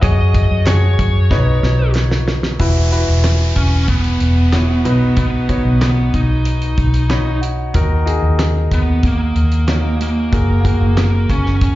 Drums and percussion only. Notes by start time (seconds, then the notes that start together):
0.03 kick, closed hi-hat
0.34 kick, closed hi-hat
0.66 snare, clap, closed hi-hat
0.99 kick, closed hi-hat
1.31 kick, snare
1.63 snare
1.95 snare, clap
2.11 snare
2.28 snare
2.43 snare
2.60 kick, closed hi-hat
2.92 closed hi-hat
3.24 snare, clap, closed hi-hat
3.56 kick, closed hi-hat
3.88 kick, closed hi-hat
4.04 closed hi-hat
4.20 closed hi-hat
4.53 snare, clap, closed hi-hat
4.85 closed hi-hat
5.17 kick, closed hi-hat
5.49 kick, closed hi-hat
5.82 snare, clap, closed hi-hat
6.14 kick, closed hi-hat
6.45 closed hi-hat
6.62 closed hi-hat
6.78 kick, closed hi-hat
6.94 closed hi-hat
7.10 snare, clap, closed hi-hat
7.43 closed hi-hat
7.74 kick, closed hi-hat
8.07 closed hi-hat
8.39 snare, clap, closed hi-hat
8.71 kick, closed hi-hat
9.03 kick, closed hi-hat
9.36 closed hi-hat
9.52 closed hi-hat
9.68 snare, clap, closed hi-hat
10.01 closed hi-hat
10.33 kick, closed hi-hat
10.65 kick, closed hi-hat
10.97 snare, clap, closed hi-hat
11.30 kick, closed hi-hat
11.46 snare
11.61 kick, closed hi-hat